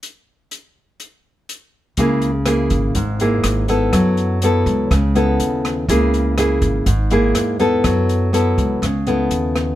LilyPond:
<<
  \new Staff \with { instrumentName = "Nylon-string guitar" } { \time 4/4 \key cis \minor \tempo 4 = 123 << { r1 | <ais e' gis'>8 r8 <ais e' gis'>4 r8 <ais e' gis'>4 <b e' a'>8~ | <b e' a'>4 <b e' a'>4 r8 <b e' a'>4. | <ais e' gis'>4 <ais e' gis'>4 r8 <ais e' gis'>4 <b e' a'>8~ |
<b e' a'>4 <b e' a'>4 r8 <b e' a'>4. | } \\ { r1 | cis2 gis,2 | fis2 cis2 | cis2 gis,2 |
fis2 cis2 | } >> }
  \new Staff \with { instrumentName = "Upright bass" } { \clef bass \time 4/4 \key cis \minor r1 | cis,4. gis,,8 gis,,4 gis,,4 | fis,4. cis,8 cis,4 dis,4 | cis,4. gis,,8 gis,,4 r4 |
fis,4. cis,8 cis,4 dis,4 | }
  \new DrumStaff \with { instrumentName = "Drums" } \drummode { \time 4/4 hh4 hh4 hh4 hh4 | <hh bd>8 hh8 <hh ss>8 <hh bd>8 <hh bd>8 hh8 <hh ss>8 hh8 | <hh bd ss>8 hh8 hh8 <hh bd>8 <hh bd ss>8 hh8 hh8 <hh ss>8 | <hh bd>8 hh8 <hh ss>8 <hh bd>8 <hh bd>8 hh8 <hh ss>8 hh8 |
<hh bd ss>8 hh8 hh8 <hh bd>8 <hh bd ss>8 hh8 hh8 <hh ss>8 | }
>>